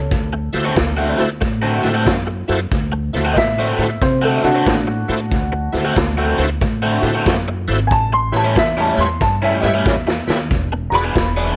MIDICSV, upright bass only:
0, 0, Header, 1, 2, 480
1, 0, Start_track
1, 0, Tempo, 649351
1, 88, Time_signature, 4, 2, 24, 8
1, 8545, End_track
2, 0, Start_track
2, 0, Title_t, "Upright bass"
2, 0, Program_c, 0, 32
2, 0, Note_on_c, 0, 37, 73
2, 81, Note_off_c, 0, 37, 0
2, 86, Note_on_c, 0, 38, 96
2, 382, Note_off_c, 0, 38, 0
2, 397, Note_on_c, 0, 38, 85
2, 559, Note_off_c, 0, 38, 0
2, 567, Note_on_c, 0, 38, 84
2, 863, Note_off_c, 0, 38, 0
2, 879, Note_on_c, 0, 38, 72
2, 1041, Note_off_c, 0, 38, 0
2, 1045, Note_on_c, 0, 45, 91
2, 1342, Note_off_c, 0, 45, 0
2, 1355, Note_on_c, 0, 45, 77
2, 1519, Note_off_c, 0, 45, 0
2, 1527, Note_on_c, 0, 42, 81
2, 1823, Note_off_c, 0, 42, 0
2, 1840, Note_on_c, 0, 42, 79
2, 2002, Note_off_c, 0, 42, 0
2, 2006, Note_on_c, 0, 38, 100
2, 2303, Note_off_c, 0, 38, 0
2, 2322, Note_on_c, 0, 38, 86
2, 2483, Note_off_c, 0, 38, 0
2, 2487, Note_on_c, 0, 45, 82
2, 2784, Note_off_c, 0, 45, 0
2, 2798, Note_on_c, 0, 45, 76
2, 2961, Note_off_c, 0, 45, 0
2, 2968, Note_on_c, 0, 48, 94
2, 3264, Note_off_c, 0, 48, 0
2, 3282, Note_on_c, 0, 48, 75
2, 3443, Note_off_c, 0, 48, 0
2, 3449, Note_on_c, 0, 45, 81
2, 3745, Note_off_c, 0, 45, 0
2, 3762, Note_on_c, 0, 45, 82
2, 3923, Note_off_c, 0, 45, 0
2, 3927, Note_on_c, 0, 38, 84
2, 4225, Note_off_c, 0, 38, 0
2, 4239, Note_on_c, 0, 38, 77
2, 4402, Note_off_c, 0, 38, 0
2, 4408, Note_on_c, 0, 38, 96
2, 4705, Note_off_c, 0, 38, 0
2, 4720, Note_on_c, 0, 38, 80
2, 4882, Note_off_c, 0, 38, 0
2, 4888, Note_on_c, 0, 45, 92
2, 5185, Note_off_c, 0, 45, 0
2, 5193, Note_on_c, 0, 45, 85
2, 5359, Note_off_c, 0, 45, 0
2, 5368, Note_on_c, 0, 42, 78
2, 5665, Note_off_c, 0, 42, 0
2, 5678, Note_on_c, 0, 32, 83
2, 5848, Note_off_c, 0, 32, 0
2, 5848, Note_on_c, 0, 33, 91
2, 6145, Note_off_c, 0, 33, 0
2, 6157, Note_on_c, 0, 33, 86
2, 6321, Note_off_c, 0, 33, 0
2, 6330, Note_on_c, 0, 40, 88
2, 6626, Note_off_c, 0, 40, 0
2, 6635, Note_on_c, 0, 40, 82
2, 6800, Note_off_c, 0, 40, 0
2, 6808, Note_on_c, 0, 43, 84
2, 7105, Note_off_c, 0, 43, 0
2, 7118, Note_on_c, 0, 43, 75
2, 7281, Note_off_c, 0, 43, 0
2, 7287, Note_on_c, 0, 40, 81
2, 7584, Note_off_c, 0, 40, 0
2, 7595, Note_on_c, 0, 39, 81
2, 7769, Note_on_c, 0, 28, 92
2, 7780, Note_off_c, 0, 39, 0
2, 8065, Note_off_c, 0, 28, 0
2, 8072, Note_on_c, 0, 28, 80
2, 8238, Note_off_c, 0, 28, 0
2, 8246, Note_on_c, 0, 28, 94
2, 8543, Note_off_c, 0, 28, 0
2, 8545, End_track
0, 0, End_of_file